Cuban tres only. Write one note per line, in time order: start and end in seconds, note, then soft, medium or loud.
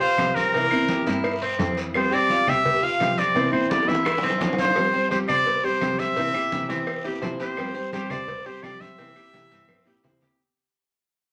0.01 0.35 F4 medium
0.36 0.53 C4 medium
0.54 0.88 C4 medium
0.89 1.06 G4 medium
1.07 1.41 E4 medium
1.42 1.76 C4 loud
2.12 2.29 C4 loud
2.30 2.47 F4 medium
2.48 2.82 G4 medium
2.83 3.17 F4 medium
3.18 3.34 C4 medium
3.36 3.70 C4 medium
3.71 3.88 G4 medium
3.89 4.22 E4 medium
4.23 4.57 C4 loud
4.59 4.76 F4 medium
4.94 5.11 C5 medium
5.11 5.28 G4 medium
5.29 5.63 C5 medium
5.64 5.98 G4 medium
5.99 6.16 C5 medium
6.17 6.34 C4 medium
6.34 6.68 G4 medium
6.70 7.04 C4 medium
7.05 7.22 G4 medium
7.22 7.39 C5 medium
7.40 7.74 G4 medium
7.75 7.92 C5 medium
7.93 8.10 G4 medium
8.10 8.44 C5 medium
8.46 8.80 G4 medium
8.81 8.98 C5 medium
8.98 9.15 C4 medium
9.16 9.50 G4 medium
9.52 9.86 C4 medium
9.87 10.04 G4 medium
10.04 10.21 C5 medium
10.22 10.39 G4 medium